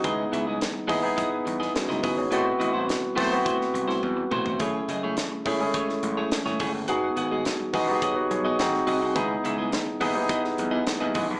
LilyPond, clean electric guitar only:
\new Staff \with { instrumentName = "Clean electric guitar" } { \time 4/4 \key cis \minor \tempo 4 = 105 <b e' gis' dis''>16 r16 <b e' gis' e''>16 <b e' gis' dis''>16 r8 <b e' gis' dis''>16 r16 <b e' gis' dis''>16 r8 <b e' gis' dis''>16 r16 <b e' gis' dis''>16 <b e' gis' dis''>16 r16 | <a e' fis' dis''>16 r16 <a e' fis' dis''>16 <a e' fis' c''>16 r8 <a e' fis' c''>16 r16 <a e' fis' c''>16 r8 <a e' fis' c''>16 r8 <a e' fis' c''>16 <a e' fis' c''>16 | <a e' gis' cis''>16 r16 <a e' gis' dis''>16 <a e' gis' cis''>16 r8 <a e' gis' cis''>16 r16 <a e' gis' cis''>16 r8 <a e' gis' cis''>16 r16 <a e' gis' cis''>16 <a e' gis' cis''>16 r16 | <b fis' gis' fis''>16 r16 <b fis' gis' fis''>16 <b fis' gis' dis''>16 r8 <b fis' gis' dis''>16 r16 <b fis' gis' dis''>16 r8 <b fis' gis' dis''>16 r8 <bis fis' gis' dis''>16 <bis fis' gis' dis''>16 |
<b e' gis' dis''>16 r16 <b e' gis' e''>16 <b e' gis' dis''>16 r8 <b e' gis' dis''>16 r16 <b e' gis' dis''>16 r8 <b e' gis' dis''>16 r16 <b e' gis' dis''>16 <b e' gis' dis''>16 r16 | }